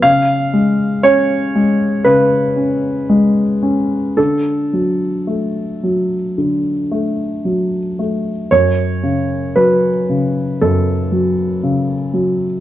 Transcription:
<<
  \new Staff \with { instrumentName = "Grand piano" } { \time 4/4 \key fis \minor \tempo 4 = 57 eis''4 cis''4 b'2 | a'2.~ a'8 r8 | cis''4 b'4 a'2 | }
  \new Staff \with { instrumentName = "Grand piano" } { \clef bass \time 4/4 \key fis \minor cis8 gis8 cis'8 gis8 cis8 cis'8 gis8 cis'8 | d8 fis8 a8 fis8 d8 a8 fis8 a8 | fis,8 cis8 fis8 cis8 fis,8 fis8 cis8 fis8 | }
>>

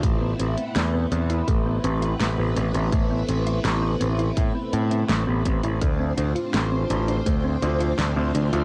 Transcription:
<<
  \new Staff \with { instrumentName = "String machine" } { \time 4/4 \key a \minor \tempo 4 = 83 <a b c' e' b'>1~ | <a b c' e' b'>1 | <a c' d' f' c''>1 | }
  \new Staff \with { instrumentName = "Synth arpeggio sound" } { \time 4/4 \key a \minor a16 b16 c'16 c'16 a16 b16 c'16 e'16 a16 b16 c'16 e'16 a16 b16 c'16 c'16 | a16 b16 c'16 e'16 a16 b16 c'16 e'16 a16 b16 c'16 c'16 a16 b16 c'16 e'16 | a16 c'16 d'16 f'16 a16 c'16 d'16 d'16 a16 c'16 d'16 f'16 a16 c'16 d'16 f'16 | }
  \new Staff \with { instrumentName = "Picked electric bass" } { \clef bass \time 4/4 \key a \minor a,,8 a,,16 r16 e,8 e,8 a,,8 a,,8 a,,16 a,,16 a,,16 a,,16 | a,,8 a,,8 a,,8 a,,8 a,16 r16 a,8 a,,16 a,,16 a,,16 a,,16 | d,8 d,16 r16 a,,8 a,,8 d,8 d,8 d,16 d,16 d,16 d,16 | }
  \new DrumStaff \with { instrumentName = "Drums" } \drummode { \time 4/4 <hh bd>8 hh16 hh16 <hh sn>8 hh16 hh16 <hh bd>8 hh16 hh16 <hh sn>8 hh16 hh16 | <hh bd>8 hh16 hh16 <hh sn>8 hh16 hh16 <hh bd>8 hh16 hh16 <hh sn>8 <hh bd>16 hh16 | <hh bd>8 hh16 hh16 <hh sn>8 hh16 hh16 <hh bd>8 hh16 hh16 <hh sn>8 hh16 hh16 | }
>>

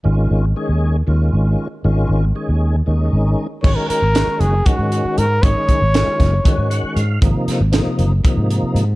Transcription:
<<
  \new Staff \with { instrumentName = "Trumpet" } { \time 7/8 \key aes \mixolydian \tempo 4 = 117 r2. r8 | r2. r8 | des''16 bes'16 bes'4 aes'8 ges'4 bes'8 | des''2. r8 |
r2. r8 | }
  \new Staff \with { instrumentName = "Tonewheel organ" } { \time 7/8 \key aes \mixolydian r2. r8 | r2. r8 | r2. r8 | r2 r8 ges''8 f''8 |
r2. r8 | }
  \new Staff \with { instrumentName = "Tonewheel organ" } { \time 7/8 \key aes \mixolydian <ees aes des' f'>4 <ees aes des' aes'>4 <ees aes des' f'>4 r8 | <ees aes des' f'>4 <ees aes des' aes'>4 <ees aes des' ees'>4 r8 | <ees aes des' ges'>4 <ees aes des' ges'>4 <ees aes des' ges'>4 r8 | <ees aes des' ees'>4 <ees aes des' f'>4 <ees aes des' ges'>4 r8 |
<c f bes ees'>4 <c f bes ees'>4 <c f bes ees'>4 r8 | }
  \new Staff \with { instrumentName = "Fretless electric bass" } { \clef bass \time 7/8 \key aes \mixolydian aes,,8 aes,,8 r16 ees,8. ees,8 aes,,8 r8 | aes,,8 aes,,8 r16 ees,8. ees,8 aes,,8 r8 | aes,,16 r8 aes,,8 r16 ges,,8 r16 aes,8 r16 aes,8 | aes,,16 r8 aes,,8 r16 ges,,8 r16 aes,8 r16 aes,8 |
aes,,16 r8 aes,,8 r16 ges,,8 r16 aes,8 r16 aes,8 | }
  \new DrumStaff \with { instrumentName = "Drums" } \drummode { \time 7/8 r4 r4 r4. | r4 r4 r4. | <cymc bd>8 hh8 <hh sn>8 hh8 <hh bd>8 hh8 hh8 | <hh bd>8 <hh bd>8 <hh sn>8 <hh bd sn>8 <hh bd>8 hh8 hh8 |
<hh bd>8 <hh sn>8 <hh sn>8 hh8 <hh bd>8 hh8 hh8 | }
>>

